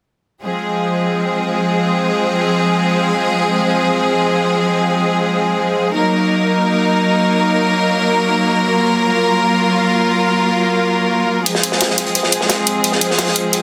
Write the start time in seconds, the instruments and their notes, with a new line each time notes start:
0.43 string section F3 G#3 C4 G#4
5.94 string section F#3 A#3 D#4 A#4
8.70 string section F4
11.46 string section F3 G#3 C4 G#4, closed hi-hat
11.55 snare
11.63 closed hi-hat
11.72 snare
11.81 snare, closed hi-hat
11.90 snare
11.98 snare, closed hi-hat
12.06 closed hi-hat
12.15 closed hi-hat
12.23 snare
12.32 closed hi-hat
12.41 snare
12.49 snare, closed hi-hat
12.67 closed hi-hat
12.84 closed hi-hat
12.92 snare
13.01 closed hi-hat
13.11 snare
13.18 snare, closed hi-hat, open hi-hat
13.27 snare
13.36 closed hi-hat
13.53 closed hi-hat